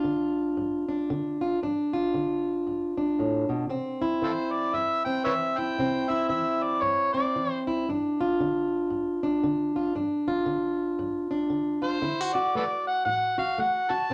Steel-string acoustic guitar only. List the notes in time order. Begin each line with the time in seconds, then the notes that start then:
Already playing: D4 F4
0.04 D3
0.57 G2
0.89 D4
1.10 D3
1.41 F4
1.63 G2 D4
1.93 F4
2.14 D3
2.67 G2
2.97 D4
3.19 A2
3.49 B2
3.69 C3 C4
4.02 E4
4.22 E3
4.74 G2
5.06 C4
5.26 E3
5.58 E4
5.79 C3 C4
6.10 E4
6.29 E3
6.82 G2
7.14 C4
7.36 E3
7.67 E4
7.89 G2 D4
8.21 F4
8.40 D3
8.90 G2
9.23 D4
9.44 D3
9.76 F4
9.95 G2 D4
10.28 F4
10.46 D3
10.99 G2
11.31 D4
11.50 D3
11.82 F4
12.02 D3 E4
12.21 F#4
12.35 F#4
12.55 A3
13.06 A2
13.38 F#4
13.58 A3
13.90 F#4
14.10 C3